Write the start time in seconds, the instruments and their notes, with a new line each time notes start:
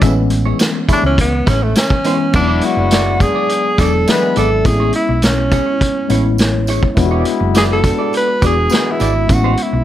Already playing: vibraphone F#5
0.01 fingered electric bass A1, trombone section C#3 A3 C#4, tine electric piano E3 G#3 B3 C#4, clean electric guitar E4 G#4 E5, kick, closed hi-hat, tambourine
0.16 muted clean electric guitar stroke
0.30 muted clean electric guitar stroke, closed hi-hat, tambourine
0.46 clean electric guitar E4 G#4 C#5
0.59 muted clean electric guitar stroke, snare, closed hi-hat, tambourine
0.75 muted clean electric guitar stroke
0.89 trombone section A3 C#4 E4, clean electric guitar E4 G#4 C#5, muted fingered electric bass stroke, kick, closed hi-hat, tambourine
0.93 tenor saxophone D4
1.03 fingered electric bass C#2, tenor saxophone C#4, muted clean electric guitar stroke
1.18 tenor saxophone B3, kick, closed hi-hat
1.33 muted clean electric guitar stroke
1.46 fingered electric bass A1, tenor saxophone C#4, clean electric guitar E4 G#4 C#5, kick, snare, closed hi-hat, tambourine
1.61 tenor saxophone A3, muted clean electric guitar stroke
1.75 tenor saxophone C#4, muted clean electric guitar stroke, snare, closed hi-hat, tambourine
1.90 muted clean electric guitar stroke, kick
2.04 tine electric piano E3 G#3 B3 C#4, clean electric guitar E4 G#4 C#5, closed hi-hat, tambourine
2.19 muted clean electric guitar stroke
2.32 fingered electric bass E1, tine electric piano F#3 G#3 B3 C#4, trombone section G#3 B3 E4, tenor saxophone D4, muted clean electric guitar stroke, kick, crash, tambourine
2.42 tine electric piano D4
2.48 clean electric guitar E4 G#4 D5
2.61 tenor saxophone F#4, vibraphone D5, muted clean electric guitar stroke, closed hi-hat, tambourine
2.77 fingered electric bass F#1, muted clean electric guitar stroke
2.91 clean electric guitar E4 G#4 D5, snare, closed hi-hat, tambourine
3.20 trombone section G#3 B3 D4, tenor saxophone G#4, muted clean electric guitar stroke, kick, closed hi-hat, tambourine
3.35 clean electric guitar E4 G#4 D5
3.49 closed hi-hat, tambourine
3.65 muted clean electric guitar stroke
3.78 fingered electric bass E1, tine electric piano F#3 G#3 B3 D4, clean electric guitar E4 G#4 D5, tenor saxophone A4, kick, snare, closed hi-hat, tambourine
3.94 muted clean electric guitar stroke
4.07 trombone section E3 G#3 B3, tenor saxophone B4, vibraphone E5, muted clean electric guitar stroke, snare, closed hi-hat, tambourine
4.23 muted clean electric guitar stroke
4.36 fingered electric bass G#1, clean electric guitar E4 G#4 D5, tenor saxophone A4, closed hi-hat, tambourine
4.51 muted clean electric guitar stroke
4.64 fingered electric bass A1, tine electric piano G#3 B3 C4 E4, tenor saxophone G#4, muted clean electric guitar stroke, kick, closed hi-hat, tambourine
4.73 tine electric piano C#4
4.80 clean electric guitar E4 G#4 C#5
4.93 tenor saxophone E4, muted clean electric guitar stroke, closed hi-hat
5.09 fingered electric bass B1, muted clean electric guitar stroke
5.22 tenor saxophone C#4, muted clean electric guitar stroke, snare, closed hi-hat, tambourine
5.38 muted clean electric guitar stroke
5.51 clean electric guitar E4 G#4 C#5, kick, closed hi-hat, tambourine
5.67 muted clean electric guitar stroke
5.81 muted clean electric guitar stroke, kick, closed hi-hat
6.09 fingered electric bass A1, tine electric piano G#3 B3 C#4 E4, clean electric guitar E4 G#4 C#5, closed hi-hat, tambourine
6.25 muted clean electric guitar stroke
6.38 vibraphone C#5, muted clean electric guitar stroke, snare, closed hi-hat, tambourine
6.67 clean electric guitar E4 G#4 C#5, closed hi-hat, tambourine
6.83 muted clean electric guitar stroke, kick
6.96 fingered electric bass E1, tine electric piano G#3 B3 D4 F4, trombone section G#3 B3 E4, muted clean electric guitar stroke, kick, closed hi-hat, tambourine
7.05 tine electric piano F#4
7.11 clean electric guitar E4 G#4 D5
7.25 muted clean electric guitar stroke, closed hi-hat, tambourine
7.40 fingered electric bass F#1, muted clean electric guitar stroke
7.55 clean electric guitar E4 G#4 D5, tenor saxophone G#4, snare, closed hi-hat, tambourine
7.73 tenor saxophone A4
7.84 trombone section G#3 B3 D4, muted clean electric guitar stroke, kick, closed hi-hat, tambourine
7.99 clean electric guitar E4 G#4 D5
8.13 closed hi-hat, tambourine
8.17 tenor saxophone B4
8.28 muted clean electric guitar stroke
8.41 fingered electric bass E1, tine electric piano G#3 B3 D4 F#4, clean electric guitar E4 G#4 D5, kick, snare, closed hi-hat, tambourine
8.46 tenor saxophone G#4
8.57 muted clean electric guitar stroke
8.70 trombone section E3 G#3 B3, muted clean electric guitar stroke, snare, closed hi-hat, tambourine
8.86 muted clean electric guitar stroke
8.91 tenor saxophone E4
9.00 fingered electric bass G#1, clean electric guitar E4 G#4 D5, closed hi-hat, tambourine
9.15 muted clean electric guitar stroke
9.27 fingered electric bass A1, tine electric piano G#3 B3 C#4 E4, muted clean electric guitar stroke, kick, closed hi-hat, tambourine
9.34 tenor saxophone F#4
9.44 clean electric guitar E4 G#4 C#5
9.57 muted clean electric guitar stroke, closed hi-hat
9.62 tenor saxophone E4
9.73 fingered electric bass B1, muted clean electric guitar stroke